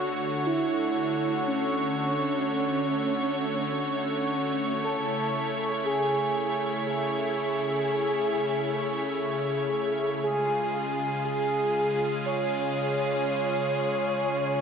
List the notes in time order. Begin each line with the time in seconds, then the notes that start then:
Already playing: D3 A3 F#4 C#5
0.46 E4
1.47 C#4
4.84 C#3 E4 A4
5.85 G#4
6.86 G#4
10.23 G#3 F4 G#4
11.25 G#4
12.26 C#5